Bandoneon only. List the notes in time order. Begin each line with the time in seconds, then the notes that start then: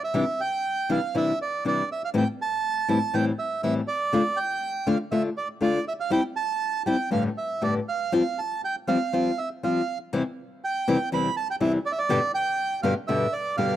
0.04 E5
0.41 G5
0.91 F5
1.17 E5
1.42 D5
1.68 D5
1.92 E5
2.05 F5
2.17 G5
2.42 A5
2.90 A5
3.14 G5
3.39 E5
3.63 E5
3.88 D5
4.37 G5
4.87 F5
5.12 E5
5.37 D5
5.62 D5
5.88 E5
6.00 F5
6.12 G5
6.36 A5
6.86 G5
7.12 F5
7.38 E5
7.63 D5
7.89 F5
8.39 A5
8.65 G5
8.88 F5
9.38 E5
9.64 F5
10.64 G5
11.14 B5
11.37 A5
11.51 G5
11.62 E5
11.86 D5
11.92 E5
11.99 D5
12.34 G5
12.83 F5
13.08 E5
13.33 D5
13.57 F5